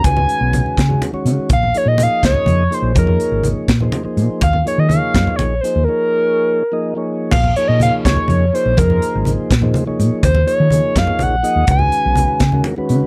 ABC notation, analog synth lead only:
X:1
M:6/8
L:1/16
Q:3/8=83
K:Bbm
V:1 name="Analog synth lead"
a8 z4 | f2 d e f2 d4 c2 | B4 z8 | f2 d e f4 d2 c2 |
B8- B2 z2 | f2 d e f2 d4 c2 | B4 z8 | c2 d4 f2 g4 |
a8 z4 |]